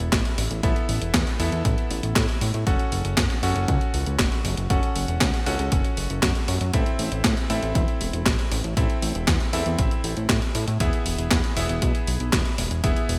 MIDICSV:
0, 0, Header, 1, 4, 480
1, 0, Start_track
1, 0, Tempo, 508475
1, 598, Time_signature, 4, 2, 24, 8
1, 12449, End_track
2, 0, Start_track
2, 0, Title_t, "Electric grand piano"
2, 0, Program_c, 0, 2
2, 0, Note_on_c, 0, 59, 81
2, 0, Note_on_c, 0, 64, 74
2, 0, Note_on_c, 0, 69, 73
2, 0, Note_on_c, 0, 76, 93
2, 570, Note_off_c, 0, 59, 0
2, 570, Note_off_c, 0, 64, 0
2, 570, Note_off_c, 0, 69, 0
2, 570, Note_off_c, 0, 76, 0
2, 598, Note_on_c, 0, 59, 78
2, 598, Note_on_c, 0, 69, 73
2, 598, Note_on_c, 0, 76, 84
2, 599, Note_on_c, 0, 64, 70
2, 1290, Note_off_c, 0, 59, 0
2, 1290, Note_off_c, 0, 64, 0
2, 1290, Note_off_c, 0, 69, 0
2, 1290, Note_off_c, 0, 76, 0
2, 1318, Note_on_c, 0, 59, 79
2, 1318, Note_on_c, 0, 64, 77
2, 1318, Note_on_c, 0, 69, 76
2, 1318, Note_on_c, 0, 76, 90
2, 2490, Note_off_c, 0, 59, 0
2, 2490, Note_off_c, 0, 64, 0
2, 2490, Note_off_c, 0, 69, 0
2, 2490, Note_off_c, 0, 76, 0
2, 2518, Note_on_c, 0, 61, 81
2, 2518, Note_on_c, 0, 66, 71
2, 2518, Note_on_c, 0, 69, 73
2, 2518, Note_on_c, 0, 78, 88
2, 3209, Note_off_c, 0, 61, 0
2, 3210, Note_off_c, 0, 66, 0
2, 3210, Note_off_c, 0, 69, 0
2, 3210, Note_off_c, 0, 78, 0
2, 3238, Note_on_c, 0, 61, 84
2, 3238, Note_on_c, 0, 66, 76
2, 3238, Note_on_c, 0, 69, 77
2, 3238, Note_on_c, 0, 78, 92
2, 4410, Note_off_c, 0, 61, 0
2, 4410, Note_off_c, 0, 66, 0
2, 4410, Note_off_c, 0, 69, 0
2, 4410, Note_off_c, 0, 78, 0
2, 4439, Note_on_c, 0, 61, 78
2, 4439, Note_on_c, 0, 66, 71
2, 4439, Note_on_c, 0, 69, 70
2, 4439, Note_on_c, 0, 78, 88
2, 5130, Note_off_c, 0, 61, 0
2, 5130, Note_off_c, 0, 66, 0
2, 5130, Note_off_c, 0, 69, 0
2, 5130, Note_off_c, 0, 78, 0
2, 5159, Note_on_c, 0, 61, 83
2, 5159, Note_on_c, 0, 66, 75
2, 5159, Note_on_c, 0, 69, 74
2, 5159, Note_on_c, 0, 78, 90
2, 6330, Note_off_c, 0, 61, 0
2, 6330, Note_off_c, 0, 66, 0
2, 6330, Note_off_c, 0, 69, 0
2, 6330, Note_off_c, 0, 78, 0
2, 6359, Note_on_c, 0, 60, 79
2, 6359, Note_on_c, 0, 64, 69
2, 6359, Note_on_c, 0, 69, 71
2, 6359, Note_on_c, 0, 76, 86
2, 7050, Note_off_c, 0, 60, 0
2, 7050, Note_off_c, 0, 64, 0
2, 7050, Note_off_c, 0, 69, 0
2, 7050, Note_off_c, 0, 76, 0
2, 7078, Note_on_c, 0, 76, 91
2, 7079, Note_on_c, 0, 60, 81
2, 7079, Note_on_c, 0, 64, 73
2, 7079, Note_on_c, 0, 69, 75
2, 8250, Note_off_c, 0, 60, 0
2, 8250, Note_off_c, 0, 64, 0
2, 8250, Note_off_c, 0, 69, 0
2, 8250, Note_off_c, 0, 76, 0
2, 8278, Note_on_c, 0, 60, 78
2, 8278, Note_on_c, 0, 64, 70
2, 8278, Note_on_c, 0, 69, 69
2, 8278, Note_on_c, 0, 76, 85
2, 8969, Note_off_c, 0, 64, 0
2, 8970, Note_off_c, 0, 60, 0
2, 8970, Note_off_c, 0, 69, 0
2, 8970, Note_off_c, 0, 76, 0
2, 8998, Note_on_c, 0, 60, 83
2, 8998, Note_on_c, 0, 64, 74
2, 8998, Note_on_c, 0, 69, 75
2, 8998, Note_on_c, 0, 76, 90
2, 10170, Note_off_c, 0, 60, 0
2, 10170, Note_off_c, 0, 64, 0
2, 10170, Note_off_c, 0, 69, 0
2, 10170, Note_off_c, 0, 76, 0
2, 10199, Note_on_c, 0, 59, 79
2, 10199, Note_on_c, 0, 64, 71
2, 10199, Note_on_c, 0, 68, 72
2, 10199, Note_on_c, 0, 76, 87
2, 10890, Note_off_c, 0, 59, 0
2, 10890, Note_off_c, 0, 64, 0
2, 10890, Note_off_c, 0, 68, 0
2, 10890, Note_off_c, 0, 76, 0
2, 10919, Note_on_c, 0, 59, 82
2, 10919, Note_on_c, 0, 64, 76
2, 10919, Note_on_c, 0, 68, 77
2, 10919, Note_on_c, 0, 76, 93
2, 12090, Note_off_c, 0, 59, 0
2, 12090, Note_off_c, 0, 64, 0
2, 12090, Note_off_c, 0, 68, 0
2, 12090, Note_off_c, 0, 76, 0
2, 12119, Note_on_c, 0, 59, 82
2, 12119, Note_on_c, 0, 64, 72
2, 12119, Note_on_c, 0, 68, 73
2, 12119, Note_on_c, 0, 76, 86
2, 12449, Note_off_c, 0, 59, 0
2, 12449, Note_off_c, 0, 64, 0
2, 12449, Note_off_c, 0, 68, 0
2, 12449, Note_off_c, 0, 76, 0
2, 12449, End_track
3, 0, Start_track
3, 0, Title_t, "Analog synth bass"
3, 0, Program_c, 1, 38
3, 0, Note_on_c, 1, 28, 81
3, 99, Note_off_c, 1, 28, 0
3, 118, Note_on_c, 1, 33, 102
3, 219, Note_off_c, 1, 33, 0
3, 358, Note_on_c, 1, 33, 89
3, 459, Note_off_c, 1, 33, 0
3, 478, Note_on_c, 1, 33, 83
3, 579, Note_off_c, 1, 33, 0
3, 598, Note_on_c, 1, 33, 102
3, 698, Note_off_c, 1, 33, 0
3, 838, Note_on_c, 1, 33, 90
3, 939, Note_off_c, 1, 33, 0
3, 958, Note_on_c, 1, 28, 79
3, 1059, Note_off_c, 1, 28, 0
3, 1078, Note_on_c, 1, 40, 108
3, 1178, Note_off_c, 1, 40, 0
3, 1319, Note_on_c, 1, 40, 97
3, 1419, Note_off_c, 1, 40, 0
3, 1439, Note_on_c, 1, 40, 81
3, 1539, Note_off_c, 1, 40, 0
3, 1557, Note_on_c, 1, 33, 105
3, 1658, Note_off_c, 1, 33, 0
3, 1799, Note_on_c, 1, 33, 98
3, 1899, Note_off_c, 1, 33, 0
3, 1920, Note_on_c, 1, 33, 86
3, 2019, Note_off_c, 1, 33, 0
3, 2038, Note_on_c, 1, 45, 102
3, 2139, Note_off_c, 1, 45, 0
3, 2279, Note_on_c, 1, 45, 92
3, 2379, Note_off_c, 1, 45, 0
3, 2400, Note_on_c, 1, 45, 85
3, 2499, Note_off_c, 1, 45, 0
3, 2517, Note_on_c, 1, 30, 98
3, 2618, Note_off_c, 1, 30, 0
3, 2759, Note_on_c, 1, 30, 94
3, 2859, Note_off_c, 1, 30, 0
3, 2879, Note_on_c, 1, 30, 82
3, 2979, Note_off_c, 1, 30, 0
3, 2997, Note_on_c, 1, 42, 104
3, 3098, Note_off_c, 1, 42, 0
3, 3239, Note_on_c, 1, 30, 97
3, 3339, Note_off_c, 1, 30, 0
3, 3359, Note_on_c, 1, 30, 84
3, 3459, Note_off_c, 1, 30, 0
3, 3478, Note_on_c, 1, 37, 107
3, 3578, Note_off_c, 1, 37, 0
3, 3719, Note_on_c, 1, 37, 91
3, 3819, Note_off_c, 1, 37, 0
3, 3839, Note_on_c, 1, 37, 81
3, 3939, Note_off_c, 1, 37, 0
3, 3958, Note_on_c, 1, 30, 103
3, 4058, Note_off_c, 1, 30, 0
3, 4198, Note_on_c, 1, 30, 95
3, 4299, Note_off_c, 1, 30, 0
3, 4318, Note_on_c, 1, 30, 84
3, 4418, Note_off_c, 1, 30, 0
3, 4438, Note_on_c, 1, 30, 100
3, 4538, Note_off_c, 1, 30, 0
3, 4679, Note_on_c, 1, 30, 95
3, 4779, Note_off_c, 1, 30, 0
3, 4799, Note_on_c, 1, 28, 78
3, 4899, Note_off_c, 1, 28, 0
3, 4918, Note_on_c, 1, 37, 106
3, 5018, Note_off_c, 1, 37, 0
3, 5159, Note_on_c, 1, 37, 100
3, 5259, Note_off_c, 1, 37, 0
3, 5279, Note_on_c, 1, 37, 83
3, 5379, Note_off_c, 1, 37, 0
3, 5398, Note_on_c, 1, 30, 110
3, 5499, Note_off_c, 1, 30, 0
3, 5638, Note_on_c, 1, 30, 93
3, 5739, Note_off_c, 1, 30, 0
3, 5760, Note_on_c, 1, 30, 84
3, 5859, Note_off_c, 1, 30, 0
3, 5878, Note_on_c, 1, 42, 101
3, 5979, Note_off_c, 1, 42, 0
3, 6119, Note_on_c, 1, 42, 94
3, 6219, Note_off_c, 1, 42, 0
3, 6239, Note_on_c, 1, 42, 84
3, 6339, Note_off_c, 1, 42, 0
3, 6358, Note_on_c, 1, 33, 104
3, 6459, Note_off_c, 1, 33, 0
3, 6600, Note_on_c, 1, 33, 92
3, 6699, Note_off_c, 1, 33, 0
3, 6719, Note_on_c, 1, 33, 79
3, 6819, Note_off_c, 1, 33, 0
3, 6838, Note_on_c, 1, 45, 104
3, 6939, Note_off_c, 1, 45, 0
3, 7079, Note_on_c, 1, 33, 98
3, 7179, Note_off_c, 1, 33, 0
3, 7199, Note_on_c, 1, 33, 79
3, 7299, Note_off_c, 1, 33, 0
3, 7318, Note_on_c, 1, 28, 109
3, 7419, Note_off_c, 1, 28, 0
3, 7558, Note_on_c, 1, 28, 91
3, 7659, Note_off_c, 1, 28, 0
3, 7679, Note_on_c, 1, 28, 83
3, 7779, Note_off_c, 1, 28, 0
3, 7798, Note_on_c, 1, 33, 100
3, 7899, Note_off_c, 1, 33, 0
3, 8039, Note_on_c, 1, 33, 93
3, 8139, Note_off_c, 1, 33, 0
3, 8158, Note_on_c, 1, 33, 85
3, 8259, Note_off_c, 1, 33, 0
3, 8278, Note_on_c, 1, 33, 102
3, 8378, Note_off_c, 1, 33, 0
3, 8518, Note_on_c, 1, 33, 92
3, 8619, Note_off_c, 1, 33, 0
3, 8638, Note_on_c, 1, 28, 83
3, 8738, Note_off_c, 1, 28, 0
3, 8758, Note_on_c, 1, 40, 105
3, 8858, Note_off_c, 1, 40, 0
3, 8998, Note_on_c, 1, 40, 101
3, 9099, Note_off_c, 1, 40, 0
3, 9119, Note_on_c, 1, 40, 83
3, 9219, Note_off_c, 1, 40, 0
3, 9238, Note_on_c, 1, 33, 105
3, 9339, Note_off_c, 1, 33, 0
3, 9480, Note_on_c, 1, 33, 96
3, 9579, Note_off_c, 1, 33, 0
3, 9599, Note_on_c, 1, 33, 83
3, 9699, Note_off_c, 1, 33, 0
3, 9718, Note_on_c, 1, 45, 100
3, 9819, Note_off_c, 1, 45, 0
3, 9959, Note_on_c, 1, 45, 90
3, 10059, Note_off_c, 1, 45, 0
3, 10079, Note_on_c, 1, 45, 84
3, 10179, Note_off_c, 1, 45, 0
3, 10198, Note_on_c, 1, 28, 101
3, 10299, Note_off_c, 1, 28, 0
3, 10439, Note_on_c, 1, 28, 96
3, 10539, Note_off_c, 1, 28, 0
3, 10558, Note_on_c, 1, 28, 83
3, 10659, Note_off_c, 1, 28, 0
3, 10677, Note_on_c, 1, 40, 107
3, 10778, Note_off_c, 1, 40, 0
3, 10918, Note_on_c, 1, 28, 96
3, 11019, Note_off_c, 1, 28, 0
3, 11039, Note_on_c, 1, 28, 79
3, 11139, Note_off_c, 1, 28, 0
3, 11158, Note_on_c, 1, 35, 102
3, 11258, Note_off_c, 1, 35, 0
3, 11399, Note_on_c, 1, 35, 94
3, 11499, Note_off_c, 1, 35, 0
3, 11519, Note_on_c, 1, 35, 83
3, 11619, Note_off_c, 1, 35, 0
3, 11638, Note_on_c, 1, 28, 100
3, 11738, Note_off_c, 1, 28, 0
3, 11879, Note_on_c, 1, 28, 94
3, 11979, Note_off_c, 1, 28, 0
3, 11999, Note_on_c, 1, 28, 84
3, 12099, Note_off_c, 1, 28, 0
3, 12118, Note_on_c, 1, 28, 100
3, 12218, Note_off_c, 1, 28, 0
3, 12358, Note_on_c, 1, 28, 94
3, 12449, Note_off_c, 1, 28, 0
3, 12449, End_track
4, 0, Start_track
4, 0, Title_t, "Drums"
4, 0, Note_on_c, 9, 42, 42
4, 93, Note_off_c, 9, 42, 0
4, 118, Note_on_c, 9, 36, 122
4, 119, Note_on_c, 9, 38, 120
4, 119, Note_on_c, 9, 39, 105
4, 119, Note_on_c, 9, 42, 97
4, 212, Note_off_c, 9, 36, 0
4, 213, Note_off_c, 9, 38, 0
4, 213, Note_off_c, 9, 39, 0
4, 213, Note_off_c, 9, 42, 0
4, 239, Note_on_c, 9, 42, 42
4, 333, Note_off_c, 9, 42, 0
4, 359, Note_on_c, 9, 46, 108
4, 453, Note_off_c, 9, 46, 0
4, 479, Note_on_c, 9, 42, 42
4, 573, Note_off_c, 9, 42, 0
4, 598, Note_on_c, 9, 36, 121
4, 599, Note_on_c, 9, 42, 93
4, 692, Note_off_c, 9, 36, 0
4, 693, Note_off_c, 9, 42, 0
4, 719, Note_on_c, 9, 42, 41
4, 813, Note_off_c, 9, 42, 0
4, 839, Note_on_c, 9, 46, 104
4, 933, Note_off_c, 9, 46, 0
4, 959, Note_on_c, 9, 42, 41
4, 1054, Note_off_c, 9, 42, 0
4, 1078, Note_on_c, 9, 36, 125
4, 1079, Note_on_c, 9, 38, 127
4, 1079, Note_on_c, 9, 39, 106
4, 1079, Note_on_c, 9, 42, 96
4, 1172, Note_off_c, 9, 36, 0
4, 1173, Note_off_c, 9, 38, 0
4, 1173, Note_off_c, 9, 39, 0
4, 1173, Note_off_c, 9, 42, 0
4, 1199, Note_on_c, 9, 42, 41
4, 1293, Note_off_c, 9, 42, 0
4, 1319, Note_on_c, 9, 46, 103
4, 1413, Note_off_c, 9, 46, 0
4, 1438, Note_on_c, 9, 42, 40
4, 1533, Note_off_c, 9, 42, 0
4, 1558, Note_on_c, 9, 36, 118
4, 1558, Note_on_c, 9, 42, 94
4, 1652, Note_off_c, 9, 36, 0
4, 1653, Note_off_c, 9, 42, 0
4, 1680, Note_on_c, 9, 42, 41
4, 1774, Note_off_c, 9, 42, 0
4, 1799, Note_on_c, 9, 46, 96
4, 1893, Note_off_c, 9, 46, 0
4, 1919, Note_on_c, 9, 42, 40
4, 2013, Note_off_c, 9, 42, 0
4, 2037, Note_on_c, 9, 36, 126
4, 2039, Note_on_c, 9, 38, 123
4, 2039, Note_on_c, 9, 39, 107
4, 2039, Note_on_c, 9, 42, 96
4, 2132, Note_off_c, 9, 36, 0
4, 2133, Note_off_c, 9, 38, 0
4, 2133, Note_off_c, 9, 39, 0
4, 2133, Note_off_c, 9, 42, 0
4, 2158, Note_on_c, 9, 42, 40
4, 2253, Note_off_c, 9, 42, 0
4, 2279, Note_on_c, 9, 46, 104
4, 2373, Note_off_c, 9, 46, 0
4, 2398, Note_on_c, 9, 42, 42
4, 2493, Note_off_c, 9, 42, 0
4, 2517, Note_on_c, 9, 36, 120
4, 2518, Note_on_c, 9, 42, 94
4, 2612, Note_off_c, 9, 36, 0
4, 2613, Note_off_c, 9, 42, 0
4, 2638, Note_on_c, 9, 42, 38
4, 2733, Note_off_c, 9, 42, 0
4, 2757, Note_on_c, 9, 46, 103
4, 2851, Note_off_c, 9, 46, 0
4, 2877, Note_on_c, 9, 42, 39
4, 2972, Note_off_c, 9, 42, 0
4, 2997, Note_on_c, 9, 36, 126
4, 2997, Note_on_c, 9, 38, 127
4, 2997, Note_on_c, 9, 39, 105
4, 2997, Note_on_c, 9, 42, 92
4, 3091, Note_off_c, 9, 38, 0
4, 3091, Note_off_c, 9, 39, 0
4, 3091, Note_off_c, 9, 42, 0
4, 3092, Note_off_c, 9, 36, 0
4, 3116, Note_on_c, 9, 42, 40
4, 3211, Note_off_c, 9, 42, 0
4, 3237, Note_on_c, 9, 46, 98
4, 3332, Note_off_c, 9, 46, 0
4, 3358, Note_on_c, 9, 42, 39
4, 3452, Note_off_c, 9, 42, 0
4, 3477, Note_on_c, 9, 42, 90
4, 3478, Note_on_c, 9, 36, 125
4, 3571, Note_off_c, 9, 42, 0
4, 3572, Note_off_c, 9, 36, 0
4, 3598, Note_on_c, 9, 42, 39
4, 3692, Note_off_c, 9, 42, 0
4, 3718, Note_on_c, 9, 46, 98
4, 3812, Note_off_c, 9, 46, 0
4, 3837, Note_on_c, 9, 42, 37
4, 3931, Note_off_c, 9, 42, 0
4, 3957, Note_on_c, 9, 38, 124
4, 3957, Note_on_c, 9, 39, 100
4, 3957, Note_on_c, 9, 42, 93
4, 3958, Note_on_c, 9, 36, 127
4, 4051, Note_off_c, 9, 38, 0
4, 4051, Note_off_c, 9, 39, 0
4, 4051, Note_off_c, 9, 42, 0
4, 4052, Note_off_c, 9, 36, 0
4, 4078, Note_on_c, 9, 42, 39
4, 4172, Note_off_c, 9, 42, 0
4, 4198, Note_on_c, 9, 46, 102
4, 4293, Note_off_c, 9, 46, 0
4, 4319, Note_on_c, 9, 42, 41
4, 4413, Note_off_c, 9, 42, 0
4, 4438, Note_on_c, 9, 36, 124
4, 4438, Note_on_c, 9, 42, 85
4, 4532, Note_off_c, 9, 36, 0
4, 4532, Note_off_c, 9, 42, 0
4, 4559, Note_on_c, 9, 42, 38
4, 4653, Note_off_c, 9, 42, 0
4, 4678, Note_on_c, 9, 46, 106
4, 4772, Note_off_c, 9, 46, 0
4, 4799, Note_on_c, 9, 42, 38
4, 4893, Note_off_c, 9, 42, 0
4, 4918, Note_on_c, 9, 36, 126
4, 4918, Note_on_c, 9, 38, 123
4, 4918, Note_on_c, 9, 39, 98
4, 4918, Note_on_c, 9, 42, 91
4, 5012, Note_off_c, 9, 36, 0
4, 5012, Note_off_c, 9, 38, 0
4, 5012, Note_off_c, 9, 39, 0
4, 5012, Note_off_c, 9, 42, 0
4, 5039, Note_on_c, 9, 42, 40
4, 5133, Note_off_c, 9, 42, 0
4, 5158, Note_on_c, 9, 46, 101
4, 5253, Note_off_c, 9, 46, 0
4, 5278, Note_on_c, 9, 42, 38
4, 5372, Note_off_c, 9, 42, 0
4, 5398, Note_on_c, 9, 36, 119
4, 5398, Note_on_c, 9, 42, 90
4, 5492, Note_off_c, 9, 36, 0
4, 5492, Note_off_c, 9, 42, 0
4, 5518, Note_on_c, 9, 42, 39
4, 5612, Note_off_c, 9, 42, 0
4, 5637, Note_on_c, 9, 46, 98
4, 5732, Note_off_c, 9, 46, 0
4, 5758, Note_on_c, 9, 42, 37
4, 5853, Note_off_c, 9, 42, 0
4, 5878, Note_on_c, 9, 36, 124
4, 5878, Note_on_c, 9, 38, 124
4, 5878, Note_on_c, 9, 39, 99
4, 5878, Note_on_c, 9, 42, 84
4, 5972, Note_off_c, 9, 36, 0
4, 5972, Note_off_c, 9, 38, 0
4, 5972, Note_off_c, 9, 39, 0
4, 5972, Note_off_c, 9, 42, 0
4, 5998, Note_on_c, 9, 42, 37
4, 6093, Note_off_c, 9, 42, 0
4, 6118, Note_on_c, 9, 46, 104
4, 6213, Note_off_c, 9, 46, 0
4, 6239, Note_on_c, 9, 42, 38
4, 6333, Note_off_c, 9, 42, 0
4, 6358, Note_on_c, 9, 36, 116
4, 6358, Note_on_c, 9, 42, 89
4, 6452, Note_off_c, 9, 36, 0
4, 6452, Note_off_c, 9, 42, 0
4, 6478, Note_on_c, 9, 42, 39
4, 6573, Note_off_c, 9, 42, 0
4, 6598, Note_on_c, 9, 46, 113
4, 6693, Note_off_c, 9, 46, 0
4, 6719, Note_on_c, 9, 42, 38
4, 6814, Note_off_c, 9, 42, 0
4, 6838, Note_on_c, 9, 36, 119
4, 6839, Note_on_c, 9, 38, 121
4, 6839, Note_on_c, 9, 39, 94
4, 6839, Note_on_c, 9, 42, 87
4, 6932, Note_off_c, 9, 36, 0
4, 6933, Note_off_c, 9, 38, 0
4, 6933, Note_off_c, 9, 39, 0
4, 6933, Note_off_c, 9, 42, 0
4, 6959, Note_on_c, 9, 42, 40
4, 7053, Note_off_c, 9, 42, 0
4, 7079, Note_on_c, 9, 46, 105
4, 7173, Note_off_c, 9, 46, 0
4, 7199, Note_on_c, 9, 42, 39
4, 7293, Note_off_c, 9, 42, 0
4, 7318, Note_on_c, 9, 36, 117
4, 7319, Note_on_c, 9, 42, 89
4, 7412, Note_off_c, 9, 36, 0
4, 7413, Note_off_c, 9, 42, 0
4, 7439, Note_on_c, 9, 42, 37
4, 7533, Note_off_c, 9, 42, 0
4, 7559, Note_on_c, 9, 46, 102
4, 7653, Note_off_c, 9, 46, 0
4, 7679, Note_on_c, 9, 42, 38
4, 7774, Note_off_c, 9, 42, 0
4, 7798, Note_on_c, 9, 36, 127
4, 7799, Note_on_c, 9, 38, 121
4, 7799, Note_on_c, 9, 39, 98
4, 7799, Note_on_c, 9, 42, 85
4, 7892, Note_off_c, 9, 36, 0
4, 7893, Note_off_c, 9, 38, 0
4, 7893, Note_off_c, 9, 39, 0
4, 7893, Note_off_c, 9, 42, 0
4, 7919, Note_on_c, 9, 42, 37
4, 8013, Note_off_c, 9, 42, 0
4, 8039, Note_on_c, 9, 46, 108
4, 8133, Note_off_c, 9, 46, 0
4, 8159, Note_on_c, 9, 42, 40
4, 8253, Note_off_c, 9, 42, 0
4, 8278, Note_on_c, 9, 36, 118
4, 8279, Note_on_c, 9, 42, 96
4, 8372, Note_off_c, 9, 36, 0
4, 8373, Note_off_c, 9, 42, 0
4, 8399, Note_on_c, 9, 42, 41
4, 8493, Note_off_c, 9, 42, 0
4, 8519, Note_on_c, 9, 46, 114
4, 8613, Note_off_c, 9, 46, 0
4, 8639, Note_on_c, 9, 42, 40
4, 8733, Note_off_c, 9, 42, 0
4, 8758, Note_on_c, 9, 36, 120
4, 8758, Note_on_c, 9, 38, 116
4, 8758, Note_on_c, 9, 39, 95
4, 8758, Note_on_c, 9, 42, 92
4, 8852, Note_off_c, 9, 36, 0
4, 8852, Note_off_c, 9, 38, 0
4, 8852, Note_off_c, 9, 39, 0
4, 8852, Note_off_c, 9, 42, 0
4, 8878, Note_on_c, 9, 42, 41
4, 8972, Note_off_c, 9, 42, 0
4, 8998, Note_on_c, 9, 46, 110
4, 9092, Note_off_c, 9, 46, 0
4, 9118, Note_on_c, 9, 42, 38
4, 9212, Note_off_c, 9, 42, 0
4, 9237, Note_on_c, 9, 42, 89
4, 9238, Note_on_c, 9, 36, 112
4, 9332, Note_off_c, 9, 36, 0
4, 9332, Note_off_c, 9, 42, 0
4, 9358, Note_on_c, 9, 42, 40
4, 9452, Note_off_c, 9, 42, 0
4, 9478, Note_on_c, 9, 46, 107
4, 9572, Note_off_c, 9, 46, 0
4, 9598, Note_on_c, 9, 42, 40
4, 9692, Note_off_c, 9, 42, 0
4, 9718, Note_on_c, 9, 36, 116
4, 9718, Note_on_c, 9, 38, 117
4, 9718, Note_on_c, 9, 39, 100
4, 9718, Note_on_c, 9, 42, 91
4, 9812, Note_off_c, 9, 36, 0
4, 9812, Note_off_c, 9, 38, 0
4, 9812, Note_off_c, 9, 39, 0
4, 9812, Note_off_c, 9, 42, 0
4, 9837, Note_on_c, 9, 42, 39
4, 9932, Note_off_c, 9, 42, 0
4, 9958, Note_on_c, 9, 46, 111
4, 10052, Note_off_c, 9, 46, 0
4, 10078, Note_on_c, 9, 42, 41
4, 10172, Note_off_c, 9, 42, 0
4, 10198, Note_on_c, 9, 36, 117
4, 10198, Note_on_c, 9, 42, 93
4, 10292, Note_off_c, 9, 36, 0
4, 10292, Note_off_c, 9, 42, 0
4, 10318, Note_on_c, 9, 42, 42
4, 10413, Note_off_c, 9, 42, 0
4, 10438, Note_on_c, 9, 46, 115
4, 10533, Note_off_c, 9, 46, 0
4, 10558, Note_on_c, 9, 42, 43
4, 10653, Note_off_c, 9, 42, 0
4, 10678, Note_on_c, 9, 36, 117
4, 10678, Note_on_c, 9, 38, 110
4, 10678, Note_on_c, 9, 39, 97
4, 10678, Note_on_c, 9, 42, 96
4, 10772, Note_off_c, 9, 36, 0
4, 10772, Note_off_c, 9, 38, 0
4, 10772, Note_off_c, 9, 39, 0
4, 10772, Note_off_c, 9, 42, 0
4, 10799, Note_on_c, 9, 42, 41
4, 10893, Note_off_c, 9, 42, 0
4, 10918, Note_on_c, 9, 46, 112
4, 11013, Note_off_c, 9, 46, 0
4, 11039, Note_on_c, 9, 42, 42
4, 11133, Note_off_c, 9, 42, 0
4, 11158, Note_on_c, 9, 36, 111
4, 11159, Note_on_c, 9, 42, 99
4, 11252, Note_off_c, 9, 36, 0
4, 11253, Note_off_c, 9, 42, 0
4, 11279, Note_on_c, 9, 42, 42
4, 11373, Note_off_c, 9, 42, 0
4, 11398, Note_on_c, 9, 46, 112
4, 11493, Note_off_c, 9, 46, 0
4, 11518, Note_on_c, 9, 42, 41
4, 11613, Note_off_c, 9, 42, 0
4, 11638, Note_on_c, 9, 36, 115
4, 11638, Note_on_c, 9, 38, 114
4, 11638, Note_on_c, 9, 39, 100
4, 11638, Note_on_c, 9, 42, 93
4, 11732, Note_off_c, 9, 36, 0
4, 11733, Note_off_c, 9, 38, 0
4, 11733, Note_off_c, 9, 39, 0
4, 11733, Note_off_c, 9, 42, 0
4, 11758, Note_on_c, 9, 42, 42
4, 11852, Note_off_c, 9, 42, 0
4, 11878, Note_on_c, 9, 46, 113
4, 11972, Note_off_c, 9, 46, 0
4, 11998, Note_on_c, 9, 42, 42
4, 12092, Note_off_c, 9, 42, 0
4, 12118, Note_on_c, 9, 36, 114
4, 12118, Note_on_c, 9, 42, 98
4, 12212, Note_off_c, 9, 36, 0
4, 12213, Note_off_c, 9, 42, 0
4, 12239, Note_on_c, 9, 42, 43
4, 12333, Note_off_c, 9, 42, 0
4, 12359, Note_on_c, 9, 46, 109
4, 12449, Note_off_c, 9, 46, 0
4, 12449, End_track
0, 0, End_of_file